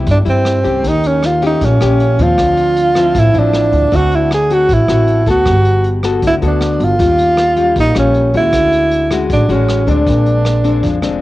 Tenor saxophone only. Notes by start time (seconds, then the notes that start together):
0.11 D4
0.30 C4
0.88 D#4
1.07 C#4
1.26 F4
1.47 D#4
1.65 C#4
2.23 F4
3.19 E4
3.39 D4
3.96 F#4
4.15 E4
4.34 G#4
4.53 F#4
4.74 E4
5.30 F#4
6.27 E4
6.47 D4
6.84 F4
7.80 D#4
7.99 C#4
8.37 E4
9.33 D4
9.53 C#4
9.91 D4